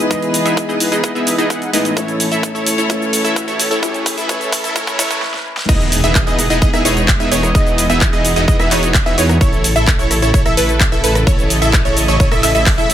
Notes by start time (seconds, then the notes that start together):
Already playing: E3 G#3 B3 D#4 G#4 B4 D#5, riser
0.09 E3 G#3 B3 D#4 E4 G#4 D#5, kick, closed hi-hat, cabasa
0.22 closed hi-hat, cabasa
0.34 open hi-hat, cabasa
0.45 B3 D#4 E4 G#4 E5, closed hi-hat, cabasa
0.57 kick, closed hi-hat, cabasa
0.69 B3 D#4 E4 G#4 D#5, cabasa
0.80 open hi-hat, cabasa
0.92 B3 D#4 E4 G#4 D#5, closed hi-hat, cabasa
1.04 B3 D#4 E4 G#4 D#5, kick, closed hi-hat, cabasa
1.15 B3 D#4 E4 G#4 E5, cabasa
1.27 open hi-hat, cabasa
1.38 B3 D#4 E4 G#4 D#5, closed hi-hat, cabasa
1.50 B3 D#4 G#4 F#5, kick, closed hi-hat, cabasa
1.62 closed hi-hat, cabasa
1.73 A2 E3 G#3 B3 D#4 E4 G#4 D#5, open hi-hat, cabasa
1.85 closed hi-hat, cabasa
1.96 A2 E3 A3 C#4 E4 A4 C#5, kick, closed hi-hat, cabasa
2.08 closed hi-hat, cabasa
2.20 open hi-hat, cabasa
2.32 E4 A4 E5, closed hi-hat, cabasa
2.43 kick, closed hi-hat, cabasa
2.55 E4 A4 C#5, cabasa
2.66 open hi-hat, cabasa
2.78 E4 A4 C#5, closed hi-hat, cabasa
2.88 A2 E3 A3 C#4 E4 A4 C#5, kick, closed hi-hat, cabasa
3.02 cabasa
3.13 open hi-hat, cabasa
3.24 E4 A4 E5, closed hi-hat, cabasa
3.36 kick, closed hi-hat, cabasa
3.48 E4 A4 C#5, closed hi-hat, cabasa
3.60 open hi-hat, cabasa
3.71 E4 A4 C#5, closed hi-hat, cabasa
3.81 A2 E3 A3 C#4 E4 A4 B4 C#5, kick, closed hi-hat, cabasa
3.94 closed hi-hat, cabasa
4.06 kick, open hi-hat, cabasa
4.18 E4 A4 E5, closed hi-hat, cabasa
4.28 A2 E3 A3 C#4 E4 A4 C#5, kick, closed hi-hat, cabasa
4.41 closed hi-hat, cabasa
4.52 kick, open hi-hat, cabasa
4.64 E4 A4 E5, closed hi-hat, cabasa
4.75 A2 E3 A3 C#4 E4 A4 C#5, kick, closed hi-hat, cabasa
4.87 kick, cabasa
4.98 A2 E3 A3 C#4 E4 A4 C#5, kick, open hi-hat, cabasa
5.11 kick, closed hi-hat, cabasa
5.22 snare
5.34 snare
5.57 snare
5.69 E1 E3 G#3 B3 D#4 E4 G#4 D#5, kick, closed hi-hat, crash, impact, cabasa
5.80 closed hi-hat, cabasa
5.92 open hi-hat, cabasa
6.04 E1 B3 D#4 E4 G#4 E5, closed hi-hat, cabasa
6.15 kick, clap, closed hi-hat, cabasa
6.27 E1 B3 D#4 E4 G#4 D#5, closed hi-hat, cabasa
6.39 cross-stick, open hi-hat, cabasa
6.50 E1 B3 D#4 E4 G#4 D#5, closed hi-hat, cabasa
6.62 E1 B3 D#4 E4 G#4 D#5, kick, closed hi-hat, cabasa
6.73 E1 B3 D#4 E4 G#4 E5, cross-stick, closed hi-hat, cabasa
6.85 E1 B3 D#4 E4 G#4 C#5, open hi-hat, cabasa
6.97 closed hi-hat, cabasa
7.08 kick, clap, closed hi-hat, cabasa
7.20 E1 B3 D#4 E4 G#4 E5, closed hi-hat, cabasa
7.31 E1 B3 D#4 E4 G#4 C#5, open hi-hat, cabasa
7.43 cross-stick, closed hi-hat, cabasa
7.55 E1 B3 D#4 E4 F#4 G#4 D#5, kick, closed hi-hat, cabasa
7.67 closed hi-hat, cabasa
7.78 open hi-hat, cabasa
7.90 E1 B3 D#4 E4 G#4 E5, closed hi-hat, cabasa
8.01 kick, clap, closed hi-hat, cabasa
8.13 E1 B3 D#4 E4 G#4 D#5, closed hi-hat, cabasa
8.25 open hi-hat, cabasa
8.36 E1 B3 D#4 E4 G#4 D#5, closed hi-hat, cabasa
8.48 E1 B3 D#4 E4 G#4 D#5, kick, closed hi-hat, cabasa
8.60 E1 B3 D#4 E4 G#4 E5, cross-stick, closed hi-hat, cabasa
8.71 E1 B3 D#4 E4 G#4 C#5, clap, open hi-hat, cabasa
8.83 closed hi-hat, cabasa
8.94 kick, clap, closed hi-hat, cabasa
9.06 E1 B3 D#4 E4 G#4 E5, closed hi-hat, cabasa
9.18 E2 B3 D#4 E4 G#4 C#5, open hi-hat, cabasa
9.29 cross-stick, closed hi-hat, cabasa
9.41 A1 C#3 E3 A3 E4 A4 C#5, kick, closed hi-hat, cabasa
9.53 closed hi-hat, cabasa
9.64 open hi-hat, cabasa
9.76 A1 E4 A4 E5, closed hi-hat, cabasa
9.87 kick, clap, closed hi-hat, cabasa
9.99 A1 E4 A4 C#5, closed hi-hat, cabasa
10.11 cross-stick, open hi-hat, cabasa
10.22 A1 E4 A4 C#5, closed hi-hat, cabasa
10.34 A1 E4 A4 C#5, kick, closed hi-hat, cabasa
10.45 A1 E4 A4 E5, cross-stick, closed hi-hat, cabasa
10.57 A1 E4 A4 B4, open hi-hat, cabasa
10.69 closed hi-hat, cabasa
10.80 kick, clap, closed hi-hat, cabasa
10.92 A1 E4 A4 E5, closed hi-hat, cabasa
11.04 A1 E4 A4 B4, open hi-hat, cabasa
11.15 cross-stick, closed hi-hat, cabasa
11.27 A1 E4 A4 C#5 D#5, kick, closed hi-hat, cabasa
11.39 closed hi-hat, cabasa
11.50 open hi-hat, cabasa
11.62 A1 E4 A4 E5, closed hi-hat, cabasa
11.73 kick, clap, closed hi-hat, cabasa
11.85 A1 E4 A4 C#5, closed hi-hat, cabasa
11.97 open hi-hat, cabasa
12.08 A1 E4 A4 C#5, closed hi-hat, cabasa
12.20 A1 E4 A4 C#5, kick, closed hi-hat, cabasa
12.31 A1 E4 A4 E5, cross-stick, closed hi-hat, cabasa
12.43 A1 E4 A4 E5, clap, open hi-hat, cabasa
12.55 A1 E4 A4 E5, closed hi-hat, cabasa
12.66 kick, clap, open hi-hat, cabasa
12.78 A2 E4 A4 E5, cabasa
12.90 open hi-hat, cabasa